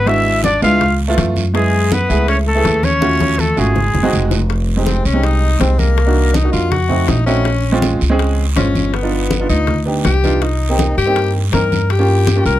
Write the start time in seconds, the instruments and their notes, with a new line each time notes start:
Already playing: upright bass G#1
0.06 grand piano G#3 B3 D4 F#4, tenor saxophone E4, trumpet E5, high bongo, high conga, long guiro
0.26 high bongo, high conga
0.44 tenor saxophone D4, trumpet D5, high bongo, high conga, short guiro
0.62 upright bass C#2, grand piano G#3 B3 D4 E4, tenor saxophone F4, trumpet F5, high bongo, short guiro
0.81 high bongo, high conga, low conga, long guiro
1.00 high bongo, high conga
1.08 grand piano A3 B3 E4 F4
1.18 upright bass F#2, high bongo, low bongo, high conga, short guiro
1.36 high conga, short guiro
1.54 grand piano G#3 B3 E4 G#4, tenor saxophone G#3, trumpet G#4, high bongo, high conga, long guiro
1.73 high conga
1.92 tenor saxophone B3, trumpet B4, high bongo, high conga, short guiro
2.09 upright bass C#2, grand piano A3 B3 E4 G#4, high conga, short guiro
2.28 tenor saxophone C#4, trumpet C#5, high bongo, high conga, long guiro
2.47 tenor saxophone A3, trumpet A4, high conga
2.55 grand piano A3 B3 E4 G#4
2.65 upright bass D#2, high bongo, low bongo, high conga, short guiro
2.83 tenor saxophone C#4, trumpet C#5, high conga, short guiro
3.01 grand piano A3 C#4 F4 F#4, high bongo, high conga, long guiro
3.20 high bongo, high conga
3.38 tenor saxophone A3, trumpet A4, high conga, short guiro
3.57 upright bass G#1, tenor saxophone G#3, grand piano A3 C#4 F4 F#4, trumpet G#4, short guiro
3.75 low bongo, low conga, long guiro
3.94 upright bass F#1, low bongo, low conga
4.03 grand piano G#3 C4 D#4 F#4
4.13 upright bass F1, low conga, short guiro
4.31 low bongo, low conga, short guiro
4.50 high bongo, high conga, long guiro
4.68 high conga
4.77 grand piano G#3 C4 D#4 G4
4.86 tenor saxophone C4, high bongo, high conga, short guiro
5.05 upright bass C2, tenor saxophone C#4, high conga, short guiro
5.14 grand piano G#3 C4 D#4 G4
5.24 tenor saxophone D#4, high bongo, high conga, long guiro
5.42 high conga
5.59 upright bass C2, grand piano G#3 C4 D#4 G4, tenor saxophone C4, high bongo, low bongo, high conga, short guiro
5.79 tenor saxophone A#3, high conga, short guiro
5.97 high bongo, high conga, long guiro
6.06 grand piano A#3 D4 D#4 F#4
6.16 high bongo, high conga
6.34 tenor saxophone D#4, high bongo, high conga, short guiro
6.43 grand piano A#3 D4 D#4 F#4
6.53 upright bass F2, tenor saxophone F4, high bongo, short guiro
6.71 tenor saxophone F#4, high bongo, high conga, low conga, long guiro
6.89 grand piano A3 C4 D#4 F#4, high bongo, high conga, low conga
7.08 upright bass A#1, tenor saxophone D#4, high bongo, low bongo, high conga, short guiro
7.26 grand piano A3 C4 D#4 F#4, tenor saxophone C#4, short guiro
7.45 high bongo, high conga, long guiro
7.64 high conga
7.72 grand piano G#3 C4 C#4 F4
7.82 high bongo, high conga, short guiro
8.01 upright bass C#2, high conga, short guiro
8.10 grand piano G#3 C4 C#4 G#4
8.19 high bongo, high conga, long guiro
8.38 high conga
8.56 upright bass G1, grand piano G#3 C#4 F4 C5, tenor saxophone C#4, high bongo, low bongo, high conga, short guiro
8.75 high conga, short guiro
8.94 tenor saxophone B3, high bongo, high conga, long guiro
9.02 grand piano B3 D4 D#4 F4
9.12 high bongo, high conga
9.30 high bongo, high conga, short guiro
9.39 grand piano B3 D4 D#4 F4
9.49 upright bass D2, tenor saxophone D#4, high bongo, short guiro
9.67 high bongo, high conga, low conga, long guiro
9.86 grand piano B3 D4 D#4 G4, high bongo, high conga
10.05 upright bass C2, tenor saxophone G4, high bongo, low bongo, high conga, short guiro
10.24 grand piano B3 D4 D#4 F4, high conga, short guiro
10.42 tenor saxophone D#4, high bongo, high conga, long guiro
10.62 high conga
10.69 grand piano A#3 C4 D#4 G4
10.79 high bongo, high conga, short guiro
10.97 upright bass G2, tenor saxophone G4, high conga, short guiro
11.06 grand piano A#3 C4 D#4 G4
11.16 high bongo, high conga, long guiro
11.35 high conga
11.52 upright bass G2, grand piano A#3 C4 D#4 A#4, tenor saxophone A#4, high bongo, low bongo, high conga, short guiro
11.72 high conga, short guiro
11.90 tenor saxophone G4, high bongo, high conga, long guiro
11.99 grand piano A#3 C#4 F4 G4
12.09 high bongo, high conga
12.27 high bongo, high conga, short guiro
12.36 grand piano A#3 C#4 F4 G4
12.45 upright bass C2, tenor saxophone A#4, high bongo, short guiro